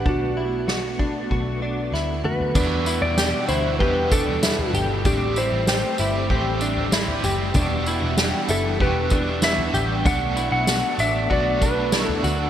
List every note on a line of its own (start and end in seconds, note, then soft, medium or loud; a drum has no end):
0.00 2.51 D4 medium
0.06 1.27 B1 medium
0.06 2.53 A3 medium
0.06 2.53 B3 medium
0.06 0.37 D4 medium
0.06 1.91 F#4 medium
0.06 kick medium
0.06 floor tom medium
0.37 0.68 E4 medium
0.68 0.99 F#4 medium
0.68 snare medium
0.99 1.31 D4 medium
0.99 kick medium
1.31 1.90 B1 medium
1.31 1.62 F#4 medium
1.31 kick medium
1.31 floor tom medium
1.62 1.93 D4 medium
1.92 2.22 D2 medium
1.92 2.24 E4 medium
1.92 snare soft
2.24 2.54 D2 medium
2.24 2.56 F#4 medium
2.24 3.05 B4 medium
2.24 mid tom medium
2.40 floor tom medium
2.55 3.49 E2 medium
2.55 3.00 E2 loud
2.55 5.03 B2 medium
2.55 3.49 B2 medium
2.55 5.03 E3 medium
2.55 3.50 E3 medium
2.55 10.01 G3 loud
2.55 3.49 G3 medium
2.55 5.03 D4 medium
2.55 2.87 D4 medium
2.55 3.48 D4 medium
2.55 3.46 F#4 medium
2.55 5.03 F#5 medium
2.55 kick loud
2.55 floor tom loud
2.55 crash loud
2.55 tambourine medium
2.86 3.17 E4 medium
2.86 tambourine medium
3.02 3.32 E2 medium
3.02 3.46 D5 loud
3.18 3.49 G4 medium
3.18 snare loud
3.18 tambourine medium
3.47 3.81 D2 medium
3.47 3.78 E3 soft
3.47 3.80 G3 soft
3.47 3.80 D4 soft
3.47 3.80 E4 medium
3.47 3.79 F#4 soft
3.47 3.79 C5 medium
3.47 tambourine medium
3.77 5.04 E2 medium
3.77 4.70 E2 loud
3.77 5.04 B2 medium
3.77 5.05 E3 medium
3.77 5.05 G3 medium
3.77 4.12 G4 medium
3.77 4.12 B4 medium
3.77 kick medium
3.77 floor tom medium
3.82 5.06 D4 medium
3.82 5.06 F#4 medium
4.11 4.43 D4 medium
4.11 4.70 A4 medium
4.11 kick medium
4.11 tambourine medium
4.27 floor tom medium
4.43 4.74 E4 medium
4.43 snare loud
4.43 tambourine loud
4.59 floor tom medium
4.73 5.04 G1 loud
4.73 5.06 G4 medium
4.73 floor tom medium
4.73 tambourine medium
5.05 5.50 A1 loud
5.05 5.99 A2 medium
5.05 6.30 E3 medium
5.05 6.01 G3 medium
5.05 7.53 A3 medium
5.05 7.53 C4 medium
5.05 5.99 C4 medium
5.05 5.37 D4 loud
5.05 5.38 G4 medium
5.05 5.98 G4 medium
5.05 kick loud
5.05 floor tom loud
5.05 tambourine medium
5.36 5.68 E4 medium
5.36 6.58 C5 loud
5.36 tambourine medium
5.52 5.82 A1 loud
5.67 5.99 G4 medium
5.67 snare loud
5.67 tambourine medium
5.98 6.29 G1 medium
5.98 6.29 G3 soft
5.98 6.31 C4 soft
5.98 6.30 E4 medium
5.98 6.30 G4 medium
5.98 tambourine medium
6.29 7.20 A1 loud
6.29 6.92 A2 medium
6.29 6.92 E3 medium
6.29 6.93 G3 medium
6.29 6.93 C4 medium
6.29 6.62 G4 medium
6.29 6.95 G4 loud
6.29 kick medium
6.29 floor tom medium
6.61 6.93 D4 medium
6.61 tambourine medium
6.77 floor tom medium
6.92 7.56 E3 medium
6.92 7.57 G3 medium
6.92 7.56 C4 medium
6.92 7.24 E4 medium
6.92 7.59 G4 medium
6.92 snare loud
6.92 tambourine loud
7.08 floor tom medium
7.24 7.54 F#1 loud
7.24 7.55 G4 medium
7.24 floor tom medium
7.24 tambourine medium
7.54 8.00 E1 loud
7.54 8.78 E2 medium
7.54 8.79 B2 loud
7.54 10.03 E3 medium
7.54 8.79 E3 loud
7.54 8.80 G3 loud
7.54 12.50 B3 medium
7.54 12.50 D4 medium
7.54 7.87 D4 loud
7.54 8.81 D4 medium
7.54 10.02 F#5 medium
7.54 kick loud
7.54 floor tom loud
7.54 tambourine medium
7.59 8.82 F#4 loud
7.86 8.18 E4 medium
7.86 tambourine medium
8.02 8.32 E1 medium
8.17 8.49 G4 medium
8.17 snare loud
8.17 tambourine medium
8.49 8.79 F#1 medium
8.49 8.80 E4 medium
8.49 8.81 A4 medium
8.49 tambourine medium
8.80 9.70 E1 loud
8.80 9.43 E2 medium
8.80 9.43 B2 medium
8.80 9.41 E3 medium
8.80 9.42 G3 medium
8.80 9.44 D4 medium
8.80 9.45 F#4 medium
8.80 9.12 G4 medium
8.80 9.45 B4 medium
8.80 kick medium
8.80 floor tom medium
9.10 9.43 D4 medium
9.10 kick medium
9.10 tambourine medium
9.42 10.05 E3 medium
9.42 10.06 G3 medium
9.42 10.08 D4 medium
9.42 9.74 E4 medium
9.42 10.09 F#4 medium
9.42 10.08 E5 loud
9.42 snare loud
9.42 tambourine loud
9.58 floor tom medium
9.74 10.04 A1 medium
9.74 10.05 G4 medium
9.74 floor tom medium
9.74 tambourine medium
10.04 10.50 B1 loud
10.04 11.29 B2 medium
10.04 11.31 F#3 medium
10.04 12.50 A3 medium
10.04 11.30 A3 medium
10.04 10.37 D4 loud
10.04 10.51 F#5 loud
10.04 kick loud
10.04 floor tom loud
10.04 tambourine medium
10.08 11.32 D4 medium
10.08 11.33 F#4 medium
10.36 10.67 E4 medium
10.36 tambourine medium
10.51 10.82 B1 loud
10.51 10.96 F#5 medium
10.67 10.99 F#4 medium
10.67 snare loud
10.67 tambourine medium
10.98 11.28 A1 medium
10.98 11.30 D4 medium
10.98 11.32 E5 loud
10.98 tambourine medium
11.30 12.20 B1 loud
11.30 11.93 B2 medium
11.30 11.92 F#3 medium
11.30 11.93 A3 medium
11.30 11.94 D4 medium
11.30 11.61 F#4 medium
11.30 11.95 F#4 medium
11.30 11.64 D5 medium
11.30 kick medium
11.30 floor tom medium
11.61 11.93 D4 medium
11.61 12.06 B4 medium
11.61 kick medium
11.61 tambourine medium
11.92 12.50 F#3 medium
11.92 12.50 A3 medium
11.92 12.50 D4 medium
11.92 12.23 E4 medium
11.92 12.50 F#4 medium
11.92 snare loud
11.92 tambourine medium
12.06 12.21 A4 medium
12.06 floor tom medium
12.23 12.50 D2 medium
12.23 12.50 F#4 medium
12.23 floor tom medium
12.23 tambourine medium